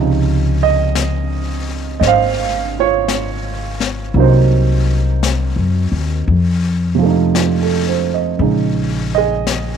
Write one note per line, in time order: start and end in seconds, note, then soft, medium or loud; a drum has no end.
0.00 1.97 C#2 medium
0.00 4.14 C3 soft
0.00 4.15 C#3 soft
0.00 4.15 F3 soft
0.00 4.16 D#4 soft
0.63 1.65 D#5 medium
0.95 brush sweep soft
0.95 snare soft
0.95 hi-hat pedal soft
2.00 4.11 G#1 medium
2.00 2.03 D#5 medium
2.00 brush sweep soft
2.00 snare soft
2.06 4.13 C5 medium
2.06 2.79 F5 medium
2.79 4.14 F4 soft
2.79 4.14 C#5 medium
3.08 brush sweep soft
3.08 snare soft
3.08 hi-hat pedal soft
3.80 snare soft
4.14 5.53 C2 medium
4.14 6.28 C3 soft
4.14 6.29 F#3 soft
4.14 6.29 A#3 soft
4.14 4.19 D#4 soft
4.14 brush sweep soft
4.20 7.04 D#4 soft
4.20 7.87 C5 medium
5.23 brush sweep soft
5.23 snare soft
5.23 hi-hat pedal soft
5.56 5.90 F#2 soft
5.92 6.25 D#2 soft
6.28 8.36 F2 medium
6.28 brush sweep soft
6.95 8.38 C3 soft
6.95 8.40 F3 soft
7.02 8.41 A3 soft
7.02 8.41 D#4 soft
7.35 7.85 F4 soft
7.35 brush sweep soft
7.35 snare soft
7.35 hi-hat pedal soft
7.62 8.07 A4 soft
7.88 8.20 C5 soft
8.14 8.51 D#5 soft
8.39 9.77 A#1 medium
8.39 9.77 C#3 soft
8.39 9.77 G#3 soft
8.39 9.77 D#4 soft
8.39 brush sweep soft
9.15 9.77 G#4 medium
9.15 9.77 D#5 medium
9.47 brush sweep soft
9.47 snare soft
9.47 hi-hat pedal soft